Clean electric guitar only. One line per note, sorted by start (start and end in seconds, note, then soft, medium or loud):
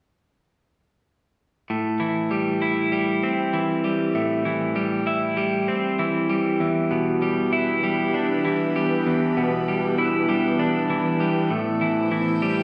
1.70 3.23 A2 soft
2.00 3.53 E3 soft
2.31 2.92 G3 soft
2.62 5.06 E4 soft
2.92 3.84 G3 soft
3.23 4.76 C4 soft
3.53 4.45 E3 soft
3.84 4.75 G3 soft
4.15 5.68 A2 soft
4.45 5.99 E3 soft
4.76 5.37 G3 soft
5.07 7.52 E4 soft
5.37 6.29 G3 soft
5.68 6.60 C4 soft
5.99 8.17 E3 soft
6.30 7.21 G3 soft
6.60 8.14 E2 soft
6.91 8.44 B2 soft
7.22 7.83 G3 soft
7.53 9.98 E4 soft
7.83 8.75 G3 soft
8.14 9.67 D4 soft
8.45 9.98 E3 soft
8.76 9.67 G3 soft
9.07 10.59 E2 soft
9.37 10.90 B2 soft
9.68 10.27 G3 soft
9.98 11.51 E4 soft
10.29 11.19 G3 soft
10.59 11.51 D4 soft
10.90 11.51 E3 soft
11.20 11.51 G3 soft
11.50 12.63 A2 soft
11.81 12.11 E3 soft
12.11 12.63 E3 soft
12.42 12.63 G3 soft